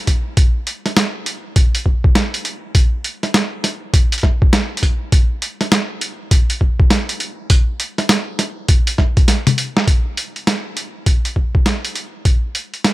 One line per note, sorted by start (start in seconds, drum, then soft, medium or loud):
0.07 kick medium
0.07 closed hi-hat medium
0.37 kick loud
0.37 closed hi-hat medium
0.67 closed hi-hat medium
0.86 snare soft
0.86 closed hi-hat soft
0.97 snare loud
0.97 closed hi-hat medium
1.26 closed hi-hat medium
1.56 kick loud
1.56 closed hi-hat medium
1.75 closed hi-hat medium
1.86 kick medium
2.04 kick loud
2.15 snare loud
2.15 closed hi-hat medium
2.34 closed hi-hat medium
2.45 closed hi-hat medium
2.75 kick loud
2.75 closed hi-hat medium
3.04 closed hi-hat medium
3.23 snare soft
3.23 closed hi-hat soft
3.34 snare loud
3.34 closed hi-hat medium
3.64 snare soft
3.64 closed hi-hat medium
3.94 kick loud
3.94 closed hi-hat medium
4.12 closed hi-hat medium
4.12 closed hi-hat soft
4.14 closed hi-hat soft
4.18 closed hi-hat soft
4.20 closed hi-hat soft
4.21 kick medium
4.21 snare soft
4.21 closed hi-hat soft
4.42 kick loud
4.53 snare loud
4.53 closed hi-hat medium
4.77 closed hi-hat medium
4.83 kick medium
4.83 closed hi-hat medium
5.12 kick loud
5.12 closed hi-hat medium
5.42 closed hi-hat medium
5.61 snare soft
5.61 closed hi-hat soft
5.72 snare loud
5.72 closed hi-hat medium
6.01 closed hi-hat medium
6.31 kick loud
6.31 closed hi-hat medium
6.50 closed hi-hat medium
6.61 kick medium
6.80 kick loud
6.90 snare loud
6.90 closed hi-hat medium
7.09 closed hi-hat medium
7.20 closed hi-hat medium
7.50 kick loud
7.50 closed hi-hat medium
7.80 closed hi-hat medium
7.98 snare soft
7.98 closed hi-hat soft
8.09 snare loud
8.09 closed hi-hat medium
8.39 snare soft
8.39 closed hi-hat medium
8.68 kick loud
8.68 closed hi-hat medium
8.87 closed hi-hat medium
8.98 kick medium
8.98 snare soft
9.17 kick loud
9.17 closed hi-hat soft
9.28 snare medium
9.28 closed hi-hat medium
9.47 closed hi-hat medium
9.47 high tom medium
9.58 closed hi-hat medium
9.77 snare medium
9.87 kick loud
9.87 closed hi-hat medium
10.17 closed hi-hat medium
10.36 closed hi-hat soft
10.47 snare loud
10.47 closed hi-hat medium
10.77 closed hi-hat medium
11.06 kick medium
11.06 closed hi-hat medium
11.25 closed hi-hat medium
11.36 kick medium
11.55 kick medium
11.66 snare loud
11.66 closed hi-hat medium
11.85 closed hi-hat medium
11.95 closed hi-hat medium
12.25 kick loud
12.25 closed hi-hat medium
12.55 closed hi-hat medium
12.74 closed hi-hat soft
12.84 snare loud
12.84 closed hi-hat medium